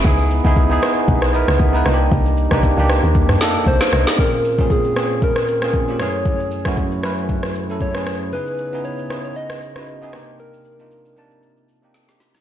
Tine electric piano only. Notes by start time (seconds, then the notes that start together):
0.04 B3 D#4 E4 G#4
0.44 B3 D#4 E4 G#4
0.70 B3 D#4 E4 G#4
1.34 B3 D#4 E4 A#4
1.73 B3 D#4 E4 B4
1.85 A#3 D4 D#4 F4
1.94 G4
2.51 A#3 D4 D#4 G4
2.77 A#3 D4 D#4 G4
3.40 A#3 D4 D#4 A4
3.82 D5 F5
3.93 C5 D#5
4.08 A#4 D5
4.18 A#2 C4 C#4 F4 G#4
4.58 A#2 C4 C#4 F4 G#4
4.96 A#2 C4 C#4 F4 G#4
5.62 A#2 C4 C#4 F4 G#4
5.88 A#2 C4 C#4 F4 G4
5.99 F#2 A3 C#4 E4 G#4
6.65 F#2 A3 C#4 E4 F#4
7.03 F#2 A3 C#4 E4 B4
7.69 F#2 A3 C#4 E4 A4
7.95 F#2 A3 C#4 E4 G#4
8.32 C#3 B3 D#4 E4 G#4
8.72 C#3 B3 D#4 E4 G#4
9.10 C#3 B3 D#4 E4 G#4
9.75 C#3 B3 D#4 E4 F#4
10.01 C#3 B3 D#4 E4 G#4
10.13 C3 A#3 D4 D#4 G4
10.79 C3 A#3 D4 D#4 F4
11.16 C3 A#3 D4 D#4 A5
11.82 C3 A#3 D4 D#4 G4
12.08 C3 A#3 D4 D#4 G4